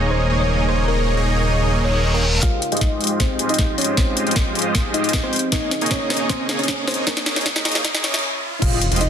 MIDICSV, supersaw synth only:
0, 0, Header, 1, 2, 480
1, 0, Start_track
1, 0, Tempo, 387097
1, 1090, Time_signature, 4, 2, 24, 8
1, 11277, End_track
2, 0, Start_track
2, 0, Title_t, "Supersaw synth"
2, 0, Program_c, 0, 81
2, 0, Note_on_c, 0, 58, 86
2, 0, Note_on_c, 0, 63, 82
2, 0, Note_on_c, 0, 68, 81
2, 0, Note_on_c, 0, 73, 80
2, 0, Note_on_c, 0, 75, 98
2, 340, Note_off_c, 0, 58, 0
2, 340, Note_off_c, 0, 63, 0
2, 340, Note_off_c, 0, 68, 0
2, 340, Note_off_c, 0, 73, 0
2, 340, Note_off_c, 0, 75, 0
2, 368, Note_on_c, 0, 58, 93
2, 368, Note_on_c, 0, 63, 84
2, 368, Note_on_c, 0, 68, 86
2, 368, Note_on_c, 0, 73, 82
2, 368, Note_on_c, 0, 75, 96
2, 821, Note_off_c, 0, 58, 0
2, 821, Note_off_c, 0, 63, 0
2, 821, Note_off_c, 0, 68, 0
2, 821, Note_off_c, 0, 73, 0
2, 821, Note_off_c, 0, 75, 0
2, 846, Note_on_c, 0, 58, 75
2, 846, Note_on_c, 0, 68, 70
2, 847, Note_on_c, 0, 63, 71
2, 847, Note_on_c, 0, 73, 66
2, 848, Note_on_c, 0, 75, 81
2, 1060, Note_off_c, 0, 58, 0
2, 1060, Note_off_c, 0, 63, 0
2, 1060, Note_off_c, 0, 68, 0
2, 1060, Note_off_c, 0, 73, 0
2, 1061, Note_off_c, 0, 75, 0
2, 1088, Note_on_c, 0, 68, 68
2, 1089, Note_on_c, 0, 63, 70
2, 1089, Note_on_c, 0, 73, 68
2, 1089, Note_on_c, 0, 75, 79
2, 1090, Note_on_c, 0, 58, 76
2, 1423, Note_off_c, 0, 68, 0
2, 1424, Note_off_c, 0, 58, 0
2, 1424, Note_off_c, 0, 63, 0
2, 1424, Note_off_c, 0, 73, 0
2, 1424, Note_off_c, 0, 75, 0
2, 1451, Note_on_c, 0, 68, 83
2, 1451, Note_on_c, 0, 75, 98
2, 1452, Note_on_c, 0, 58, 88
2, 1452, Note_on_c, 0, 63, 85
2, 1452, Note_on_c, 0, 73, 82
2, 2623, Note_off_c, 0, 58, 0
2, 2623, Note_off_c, 0, 63, 0
2, 2623, Note_off_c, 0, 68, 0
2, 2623, Note_off_c, 0, 73, 0
2, 2623, Note_off_c, 0, 75, 0
2, 2652, Note_on_c, 0, 68, 82
2, 2653, Note_on_c, 0, 58, 92
2, 2653, Note_on_c, 0, 63, 86
2, 2653, Note_on_c, 0, 73, 85
2, 2653, Note_on_c, 0, 79, 103
2, 2789, Note_off_c, 0, 58, 0
2, 2789, Note_off_c, 0, 63, 0
2, 2789, Note_off_c, 0, 68, 0
2, 2789, Note_off_c, 0, 73, 0
2, 2789, Note_off_c, 0, 79, 0
2, 3009, Note_on_c, 0, 67, 69
2, 3009, Note_on_c, 0, 72, 68
2, 3010, Note_on_c, 0, 56, 77
2, 3010, Note_on_c, 0, 65, 72
2, 3010, Note_on_c, 0, 75, 86
2, 3233, Note_off_c, 0, 56, 0
2, 3233, Note_off_c, 0, 65, 0
2, 3233, Note_off_c, 0, 67, 0
2, 3233, Note_off_c, 0, 72, 0
2, 3233, Note_off_c, 0, 75, 0
2, 3371, Note_on_c, 0, 56, 89
2, 3371, Note_on_c, 0, 65, 83
2, 3371, Note_on_c, 0, 67, 82
2, 3371, Note_on_c, 0, 72, 85
2, 3371, Note_on_c, 0, 75, 99
2, 4180, Note_off_c, 0, 56, 0
2, 4180, Note_off_c, 0, 65, 0
2, 4180, Note_off_c, 0, 67, 0
2, 4180, Note_off_c, 0, 75, 0
2, 4181, Note_off_c, 0, 72, 0
2, 4207, Note_on_c, 0, 56, 93
2, 4207, Note_on_c, 0, 67, 84
2, 4207, Note_on_c, 0, 72, 86
2, 4208, Note_on_c, 0, 65, 84
2, 4208, Note_on_c, 0, 75, 99
2, 4660, Note_off_c, 0, 56, 0
2, 4660, Note_off_c, 0, 72, 0
2, 4661, Note_off_c, 0, 65, 0
2, 4661, Note_off_c, 0, 67, 0
2, 4661, Note_off_c, 0, 75, 0
2, 4686, Note_on_c, 0, 72, 72
2, 4686, Note_on_c, 0, 75, 82
2, 4687, Note_on_c, 0, 56, 78
2, 4687, Note_on_c, 0, 65, 70
2, 4687, Note_on_c, 0, 67, 70
2, 4900, Note_off_c, 0, 56, 0
2, 4900, Note_off_c, 0, 65, 0
2, 4900, Note_off_c, 0, 67, 0
2, 4900, Note_off_c, 0, 72, 0
2, 4900, Note_off_c, 0, 75, 0
2, 4925, Note_on_c, 0, 65, 70
2, 4925, Note_on_c, 0, 75, 86
2, 4926, Note_on_c, 0, 56, 77
2, 4926, Note_on_c, 0, 67, 69
2, 4926, Note_on_c, 0, 72, 71
2, 5262, Note_off_c, 0, 56, 0
2, 5262, Note_off_c, 0, 65, 0
2, 5262, Note_off_c, 0, 67, 0
2, 5262, Note_off_c, 0, 72, 0
2, 5262, Note_off_c, 0, 75, 0
2, 5290, Note_on_c, 0, 67, 86
2, 5290, Note_on_c, 0, 72, 85
2, 5290, Note_on_c, 0, 75, 102
2, 5291, Note_on_c, 0, 56, 94
2, 5291, Note_on_c, 0, 65, 87
2, 6462, Note_off_c, 0, 67, 0
2, 6462, Note_off_c, 0, 72, 0
2, 6462, Note_off_c, 0, 75, 0
2, 6463, Note_off_c, 0, 56, 0
2, 6463, Note_off_c, 0, 65, 0
2, 6490, Note_on_c, 0, 56, 94
2, 6490, Note_on_c, 0, 67, 87
2, 6491, Note_on_c, 0, 65, 86
2, 6491, Note_on_c, 0, 72, 90
2, 6491, Note_on_c, 0, 79, 105
2, 6628, Note_off_c, 0, 56, 0
2, 6628, Note_off_c, 0, 65, 0
2, 6628, Note_off_c, 0, 67, 0
2, 6628, Note_off_c, 0, 72, 0
2, 6628, Note_off_c, 0, 79, 0
2, 6847, Note_on_c, 0, 58, 78
2, 6848, Note_on_c, 0, 68, 70
2, 6848, Note_on_c, 0, 75, 83
2, 6849, Note_on_c, 0, 63, 72
2, 6849, Note_on_c, 0, 73, 70
2, 7072, Note_off_c, 0, 58, 0
2, 7072, Note_off_c, 0, 68, 0
2, 7072, Note_off_c, 0, 73, 0
2, 7072, Note_off_c, 0, 75, 0
2, 7073, Note_off_c, 0, 63, 0
2, 7210, Note_on_c, 0, 63, 84
2, 7211, Note_on_c, 0, 58, 93
2, 7211, Note_on_c, 0, 68, 84
2, 7211, Note_on_c, 0, 75, 104
2, 7212, Note_on_c, 0, 73, 84
2, 8020, Note_off_c, 0, 58, 0
2, 8020, Note_off_c, 0, 63, 0
2, 8020, Note_off_c, 0, 68, 0
2, 8020, Note_off_c, 0, 75, 0
2, 8021, Note_off_c, 0, 73, 0
2, 8045, Note_on_c, 0, 58, 97
2, 8046, Note_on_c, 0, 63, 89
2, 8046, Note_on_c, 0, 73, 87
2, 8046, Note_on_c, 0, 75, 105
2, 8047, Note_on_c, 0, 68, 88
2, 8499, Note_off_c, 0, 58, 0
2, 8500, Note_off_c, 0, 63, 0
2, 8500, Note_off_c, 0, 68, 0
2, 8500, Note_off_c, 0, 73, 0
2, 8500, Note_off_c, 0, 75, 0
2, 8524, Note_on_c, 0, 63, 74
2, 8524, Note_on_c, 0, 75, 91
2, 8525, Note_on_c, 0, 58, 81
2, 8525, Note_on_c, 0, 68, 72
2, 8525, Note_on_c, 0, 73, 72
2, 8739, Note_off_c, 0, 63, 0
2, 8739, Note_off_c, 0, 68, 0
2, 8739, Note_off_c, 0, 73, 0
2, 8739, Note_off_c, 0, 75, 0
2, 8740, Note_off_c, 0, 58, 0
2, 9133, Note_on_c, 0, 58, 93
2, 9133, Note_on_c, 0, 63, 88
2, 9133, Note_on_c, 0, 68, 88
2, 9133, Note_on_c, 0, 73, 87
2, 9133, Note_on_c, 0, 75, 107
2, 10209, Note_off_c, 0, 58, 0
2, 10209, Note_off_c, 0, 63, 0
2, 10209, Note_off_c, 0, 68, 0
2, 10209, Note_off_c, 0, 73, 0
2, 10209, Note_off_c, 0, 75, 0
2, 10689, Note_on_c, 0, 65, 73
2, 10690, Note_on_c, 0, 56, 78
2, 10690, Note_on_c, 0, 67, 71
2, 10690, Note_on_c, 0, 72, 71
2, 10690, Note_on_c, 0, 75, 87
2, 10913, Note_off_c, 0, 56, 0
2, 10913, Note_off_c, 0, 65, 0
2, 10913, Note_off_c, 0, 67, 0
2, 10913, Note_off_c, 0, 72, 0
2, 10913, Note_off_c, 0, 75, 0
2, 11054, Note_on_c, 0, 56, 90
2, 11054, Note_on_c, 0, 67, 84
2, 11054, Note_on_c, 0, 72, 89
2, 11054, Note_on_c, 0, 75, 104
2, 11055, Note_on_c, 0, 65, 86
2, 11277, Note_off_c, 0, 56, 0
2, 11277, Note_off_c, 0, 65, 0
2, 11277, Note_off_c, 0, 67, 0
2, 11277, Note_off_c, 0, 72, 0
2, 11277, Note_off_c, 0, 75, 0
2, 11277, End_track
0, 0, End_of_file